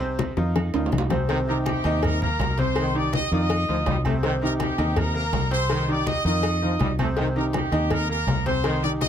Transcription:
Already playing: fingered electric bass C2
0.00 grand piano C3 C4 C5, high conga
0.19 cowbell, high bongo, high conga, low timbale, low agogo
0.37 fingered electric bass F2, grand piano D#3 D#4 F4, high bongo, high conga
0.55 cowbell, low bongo, high conga, low agogo
0.74 fingered electric bass D2, grand piano D#3 D#4 F4, high conga, high timbale
0.86 low timbale
0.92 fingered electric bass C2, cowbell, low bongo, high conga, low agogo
0.98 low timbale
1.10 grand piano C3 C4 C5, low bongo, high conga, low timbale, low agogo
1.29 grand piano C3 C4 C5, trombone section D#3, cowbell, high conga, low agogo
1.46 trombone section C3, grand piano D#3 D#4 G4, trumpet section A#4 A#5, high conga
1.66 trumpet section G4 G5, cowbell, high conga, low timbale, low agogo
1.84 fingered electric bass D#2, grand piano D#3 D#4 D#5, cowbell, high conga, low agogo
2.03 trumpet section A#4 A#5, cowbell, high conga, low conga, low agogo
2.22 grand piano A#3 A#4, trumpet section A#4 A#5, high conga, low conga
2.39 fingered electric bass C2, cowbell, high conga, low timbale, low agogo
2.58 grand piano C3 C4 C5, trumpet section C5 C6, cowbell, high conga
2.76 trombone section D#3, cowbell, high conga, low agogo
2.94 grand piano D#3 D#4 G4, trumpet section D5 D6, high conga
3.13 trumpet section D#5 D#6, cowbell, high conga, low timbale, low agogo
3.31 fingered electric bass F2, grand piano D#3 D#4 F4, trombone section D#3, trumpet section D#5 D#6, high conga
3.50 cowbell, high conga, low agogo
3.68 fingered electric bass D2, grand piano D#3 D#4 F4, trombone section F3, high conga
3.86 fingered electric bass C2, trombone section G3, cowbell, high conga, low timbale, low agogo
4.05 grand piano C3 C4 C5, trombone section A3, high conga, low agogo
4.23 grand piano C3 C4 C5, trombone section D#3, cowbell, high conga, low agogo
4.42 trombone section C3, grand piano D#3 D#4 G4, trumpet section A#4 A#5, high conga
4.60 trumpet section G4 G5, cowbell, high conga, low timbale, low agogo
4.78 fingered electric bass D#2, grand piano D#3 D#4 D#5, cowbell, high conga, low agogo
4.96 trumpet section A#4 A#5, cowbell, high conga, low conga, low agogo
5.14 grand piano A#3 A#4, trumpet section A#4 A#5, high conga
5.32 fingered electric bass C2, cowbell, high conga, low timbale, low agogo
5.51 grand piano C3 C4 C5, trumpet section C5 C6, cowbell
5.70 trombone section D#3, cowbell, high conga, low agogo
5.88 grand piano D#3 D#4 G4, trumpet section D5 D6, high conga
6.07 trumpet section D#5 D#6, cowbell, high conga, low timbale, low agogo
6.24 fingered electric bass F2, trombone section D#3, grand piano D#3 D#4 F4, trumpet section D#5 D#6, high conga
6.43 cowbell, high conga, low agogo
6.62 grand piano D#3 D#4 F4, trombone section F3, high conga
6.79 fingered electric bass C2, trombone section G3, cowbell, high conga, low timbale, low agogo
6.98 grand piano C3 C4 C5, trombone section A3, high conga, low agogo
7.17 grand piano C3 C4 C5, trombone section D#3, cowbell, high conga, low agogo
7.36 trombone section C3, grand piano D#3 D#4 G4, trumpet section A#4 A#5, high conga
7.53 trumpet section G4 G5, cowbell, high conga, low timbale, low agogo
7.72 fingered electric bass D#2, grand piano D#3 D#4 D#5, cowbell, low agogo
7.90 trumpet section A#4 A#5, cowbell, high conga, low conga, low agogo
8.09 grand piano A#3 A#4, trumpet section A#4 A#5, high conga
8.27 fingered electric bass C2, cowbell, high conga, low timbale, low agogo
8.46 grand piano C3 C4 C5, trumpet section C5 C6, cowbell, high conga
8.63 trombone section D#3, cowbell, high conga, low agogo
8.83 grand piano D#3 D#4 G4, trumpet section D5 D6, high conga
9.01 trumpet section D#5 D#6, cowbell, high conga, low timbale, low agogo

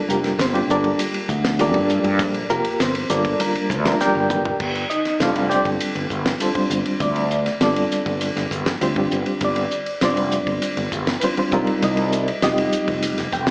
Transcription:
0.08 fretless electric bass F1, reed electric piano G3 A#3 D4 F4 G4 A#4, hi-hat pedal
0.24 snare, ride
0.39 fretless electric bass G1, reed electric piano C4 C5, snare, hi-hat pedal, ride
0.53 reed electric piano G3 A#3 D4 F4 G4, ride
0.68 fretless electric bass G1, reed electric piano D4 A4 A#4 D5, hi-hat pedal
0.84 kick, ride
0.99 hi-hat pedal, ride
1.14 ride
1.29 fretless electric bass D2, kick, hi-hat pedal
1.44 snare, ride
1.59 reed electric piano G3 A#3 D4 F4 G4 A4 A#4 D5, hi-hat pedal, ride
1.74 fretless electric bass G2, kick, ride
1.89 hi-hat pedal
2.04 fretless electric bass G2, ride
2.19 fretless electric bass A#1, kick, hi-hat pedal, ride
2.34 ride
2.50 fretless electric bass F1, reed electric piano A#3 F4 G4 A#4, hi-hat pedal
2.65 ride
2.80 fretless electric bass G1, reed electric piano C4 C5, snare, hi-hat pedal, ride
2.95 ride
3.09 fretless electric bass G1, reed electric piano G3 A#3 D4 F4 A4 A#4 D5, snare, hi-hat pedal
3.25 kick, ride
3.40 reed electric piano G3 A#3 D4 F4 A#4, hi-hat pedal, ride
3.55 muted fretless electric bass stroke, ride
3.70 fretless electric bass D2, kick, hi-hat pedal
3.85 reed electric piano G3 A#3 D4 F4 A#4, snare, ride
4.00 reed electric piano G4 A#4 D5 G5, muted fretless electric bass stroke, snare, hi-hat pedal
4.15 fretless electric bass G1
4.30 hi-hat pedal, mid tom
4.45 floor tom
4.60 fretless electric bass G1, kick, crash
4.75 ride
4.90 reed electric piano D#4 D#5, hi-hat pedal
5.05 snare, ride
5.20 fretless electric bass F1, reed electric piano G3 C4 D4 F4 A4 C5 D5 F5, snare, hi-hat pedal, ride
5.36 ride
5.49 reed electric piano G4 C5 D5 G5, snare, hi-hat pedal
5.65 fretless electric bass G1, kick, ride
5.80 hi-hat pedal, ride
5.95 fretless electric bass G1, ride
6.10 fretless electric bass G1, kick, hi-hat pedal
6.26 snare, ride
6.40 reed electric piano G3 C4 D4 F4 A4 C5, hi-hat pedal, ride
6.54 reed electric piano G3 C4 D4 F4 C5, muted fretless electric bass stroke, kick, ride
6.70 fretless electric bass G1, hi-hat pedal
6.86 ride
7.00 fretless electric bass D2, reed electric piano D5, kick, hi-hat pedal, ride
7.16 ride
7.31 hi-hat pedal
7.46 snare, ride
7.61 fretless electric bass G1, reed electric piano G3 C4 D4 F4 A4 D5, snare, hi-hat pedal, ride
7.76 ride
7.91 snare, hi-hat pedal
8.06 fretless electric bass G1, kick, ride
8.21 hi-hat pedal, ride
8.36 fretless electric bass G1, snare, ride
8.51 fretless electric bass G1, kick, hi-hat pedal
8.66 snare, ride
8.81 fretless electric bass D2, reed electric piano G3 C4 D4 F4 G4 C5, hi-hat pedal, ride
8.96 fretless electric bass G1, reed electric piano G3 C4 D4 F4 G4, kick, ride
9.11 fretless electric bass G1, hi-hat pedal
9.26 ride
9.41 fretless electric bass G1, reed electric piano D5, kick, hi-hat pedal, ride
9.56 ride
9.71 hi-hat pedal
9.86 ride
10.01 fretless electric bass F1, reed electric piano G3 C4 D4 F4 C5 D5, snare, hi-hat pedal, ride
10.17 ride
10.31 hi-hat pedal
10.47 fretless electric bass G1, kick, ride
10.62 hi-hat pedal, ride
10.77 fretless electric bass G1, ride
10.92 fretless electric bass G1, kick, hi-hat pedal
11.07 snare, ride
11.20 reed electric piano G3 C4 D4 F4 B4, hi-hat pedal, ride
11.24 reed electric piano C5
11.37 reed electric piano G3 C4 D4 F4 C5, muted fretless electric bass stroke, ride
11.52 fretless electric bass F1, reed electric piano G3 C4 D#4 F4 A#4, kick, hi-hat pedal
11.67 ride
11.82 fretless electric bass C2, reed electric piano D#5, hi-hat pedal, ride
11.97 ride
12.12 hi-hat pedal
12.28 ride
12.42 fretless electric bass F1, reed electric piano G3 C4 D#4 F4 G4 D#5, snare, hi-hat pedal, ride
12.58 ride
12.72 hi-hat pedal
12.88 fretless electric bass F1, kick, ride
13.03 hi-hat pedal, ride
13.18 fretless electric bass F1, snare, ride
13.32 fretless electric bass F1, reed electric piano G5, kick, hi-hat pedal
13.47 snare, ride

